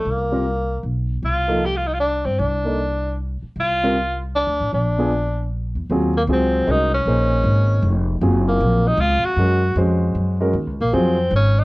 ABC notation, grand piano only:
X:1
M:3/4
L:1/8
Q:"Swing" 1/4=155
K:Cdor
V:1 name="Grand piano"
z [G,CFB] z4 | z [F,B,EA] z4 | z [B,EAd] z4 | z [G,CFB] z4 |
z [_CDF_A] z4 | [K:Ebdor] [G,CFA] z [G,CFA]2 [A,DGB] z | [B,EAc]4- [B,EAc] z | [G,CFA]4- [G,CFA] z |
[A,DGB] z [A,DGc]3 [A,DGB] | z2 [G,CFA] z3 |]